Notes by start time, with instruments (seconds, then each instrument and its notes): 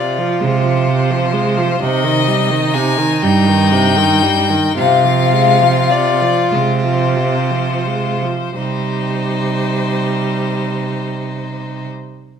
Already playing: cello C3, viola C3, violin F4 D5
0.19 viola F3
0.40 cello C3, viola G#3, violin C5
0.63 viola F3
0.88 viola C3
1.11 viola F3
1.34 viola G#3
1.58 viola F3
1.80 viola C3, cello C3, violin D#4 D#5
2.04 viola D#3
2.28 viola G3
2.51 viola D#3
2.74 viola C3, violin G#5
2.98 viola D#3
3.22 cello G2, viola G3, violin G5
3.47 viola D#3
3.72 viola C3
3.97 viola D#3
4.23 viola G3
4.50 viola D#3
4.77 viola C3, cello C3, violin F4 F5
5.05 viola F3
5.33 viola G#3
5.62 viola F3
5.91 viola C3, violin D5
6.22 viola F3
6.52 cello C3, viola G#3, violin C5
6.84 viola F3
7.17 viola C3
7.51 viola F3
7.87 viola G#3
8.23 viola F3
8.54 cello C3, viola G3, violin D#4 C5